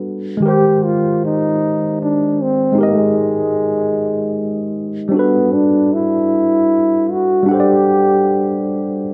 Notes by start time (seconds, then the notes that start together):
Already playing: G3 D4 F#4 A4 B4
0.37 D#3 G#3
0.42 G4 A#4
0.48 G4 C5
0.85 F4
1.25 D#4
2.02 D4
2.43 C4
2.72 G#3 D#4
2.78 G#3 G4 A#4
2.83 D#5
5.09 G3 C4 D4
5.14 B3 F#4 A4
5.19 B4
5.54 D4
5.93 E4
7.11 F#4
7.43 G3 D4
7.49 G4 A4 F#5
7.54 C5
7.60 D5